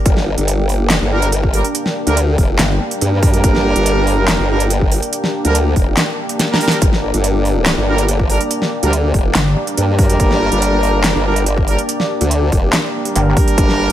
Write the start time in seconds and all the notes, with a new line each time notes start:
Already playing: A#3 D4 G4
0.06 G1 G5, kick, closed hi-hat
0.17 snare
0.38 G1, closed hi-hat
0.48 closed hi-hat
0.69 open hi-hat
0.82 F#1
0.90 snare, clap, closed hi-hat
1.01 G1
1.11 G3 D4 A#4
1.22 closed hi-hat
1.32 closed hi-hat
1.43 kick
1.54 G3 D4 A#4, open hi-hat
1.65 closed hi-hat
1.75 closed hi-hat
1.86 snare
2.07 D2 G3 D4 A#4, closed hi-hat
2.17 closed hi-hat
2.38 F1, kick, open hi-hat
2.59 G1, snare, clap, closed hi-hat
2.91 G3 D4 A#4, closed hi-hat
3.01 G2, closed hi-hat
3.23 kick, open hi-hat
3.34 closed hi-hat
3.44 G1, kick, closed hi-hat
3.55 snare
3.76 G1, closed hi-hat
3.86 closed hi-hat
4.07 open hi-hat
4.20 F#1
4.28 snare, clap, closed hi-hat
4.39 G1
4.49 G3 D4 A#4
4.60 closed hi-hat
4.70 closed hi-hat
4.81 kick
4.92 open hi-hat
5.03 closed hi-hat
5.13 closed hi-hat
5.24 snare
5.45 D2 G3 D4 A#4, closed hi-hat
5.55 closed hi-hat
5.76 F1, kick, open hi-hat
5.97 snare, clap, closed hi-hat
6.29 closed hi-hat
6.39 snare, closed hi-hat
6.50 G3 D4 A#4, snare
6.61 G3 D4 A#4, open hi-hat
6.68 snare, closed hi-hat
6.82 G1 D5, kick, closed hi-hat
6.93 snare
7.14 G1, closed hi-hat
7.24 closed hi-hat
7.45 open hi-hat
7.66 snare, clap, closed hi-hat
7.77 G1
7.87 G3 D4 A#4
7.98 closed hi-hat
8.08 closed hi-hat
8.19 kick
8.30 G3 D4 A#4, open hi-hat
8.41 closed hi-hat
8.51 closed hi-hat
8.62 snare
8.83 D2 G3 D4 A#4, closed hi-hat
8.93 closed hi-hat
9.14 F1, kick, open hi-hat
9.35 G1, snare, clap, closed hi-hat
9.67 G3 D4 A#4, closed hi-hat
9.77 G2, closed hi-hat
9.99 kick, open hi-hat
10.10 closed hi-hat
10.20 G1, kick, closed hi-hat
10.31 snare
10.52 G1, closed hi-hat
10.62 closed hi-hat
10.83 open hi-hat
10.96 F#1
11.04 snare, clap, closed hi-hat
11.15 G1
11.25 G3 D4 A#4
11.36 closed hi-hat
11.46 closed hi-hat
11.57 kick
11.68 G3 D4 A#4, open hi-hat
11.79 closed hi-hat
11.89 closed hi-hat
12.00 snare
12.21 D2, closed hi-hat
12.31 closed hi-hat
12.52 F1, kick, open hi-hat
12.73 snare, clap, closed hi-hat
13.05 G3 D4 A#4, closed hi-hat
13.16 G1, closed hi-hat
13.37 kick, open hi-hat
13.48 closed hi-hat
13.58 G1 G5, kick, closed hi-hat
13.69 snare